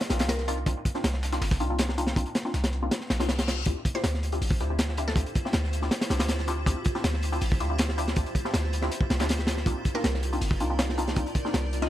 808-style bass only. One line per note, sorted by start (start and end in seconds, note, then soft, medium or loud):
0.10 0.21 A#1 loud
0.20 0.65 C2 medium
0.66 0.75 C2 loud
1.04 1.40 C2 medium
1.42 1.62 G1 loud
1.60 2.15 C2 loud
2.16 2.25 C2 loud
2.54 2.90 C2 medium
3.10 3.21 A#1 medium
3.20 3.65 C2 medium
3.66 3.75 D2 loud
4.04 4.40 D2 medium
4.42 4.62 A1 loud
4.60 5.15 D2 loud
5.16 5.25 D2 loud
5.54 5.90 D2 medium
6.10 6.22 C2 loud
6.20 6.65 D2 medium
6.66 6.75 D2 loud
7.04 7.40 D2 medium
7.42 7.62 A1 loud
7.60 8.15 D2 loud
8.17 8.25 D2 loud
8.54 8.90 D2 medium
9.10 9.21 C2 medium
9.20 9.65 D2 medium
9.66 9.75 C2 loud
10.04 10.40 C2 medium
10.42 10.62 G1 loud
10.60 11.15 C2 loud
11.17 11.25 C2 loud
11.54 11.89 C2 medium